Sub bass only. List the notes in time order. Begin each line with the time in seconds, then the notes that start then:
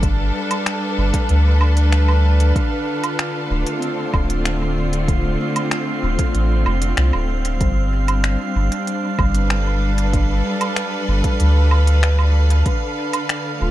Already playing: G1
0.98 G1
1.30 D2
3.50 D1
4.14 D1
6.03 D1
6.34 A1
6.66 F1
6.98 C2
7.14 D1
7.61 G1
8.56 G1
9.19 G1
11.08 G1
11.40 D2
13.61 D1